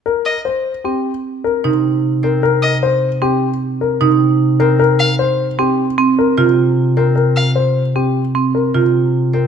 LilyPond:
<<
  \new Staff \with { instrumentName = "Violin" } { \time 6/4 \key ees \major \tempo 4 = 152 r8 ees''8 r1 r4 | r8 ees''8 r1 r4 | r8 f''8 r1 r4 | r8 f''8 r1 r4 | }
  \new Staff \with { instrumentName = "Grand piano" } { \time 6/4 \key ees \major bes'8 r8 c''8 r8 g'8 r4 bes'8 r4. bes'8 | bes'8 r8 c''8 r8 g'8 r4 bes'8 r4. bes'8 | bes'8 r8 c''8 r8 g'8 r4 bes'8 r4. bes'8 | bes'8 r8 c''8 r8 g'8 r4 bes'8 r4. bes'8 | }
  \new Staff \with { instrumentName = "Marimba" } { \time 6/4 \key ees \major r2 c'8 r4. ees'8 r4. | r2 c'8 r4. ees'8 r4. | r2 c'8 r8 c'8 r8 f'8 r4. | r2 c'8 r8 c'8 r8 f'8 r4. | }
  \new Staff \with { instrumentName = "Harp" } { \clef bass \time 6/4 \key ees \major r1 c4. c'8~ | c'1 c4. c'8~ | c'1 c4. c'8~ | c'1 c4. c'8 | }
>>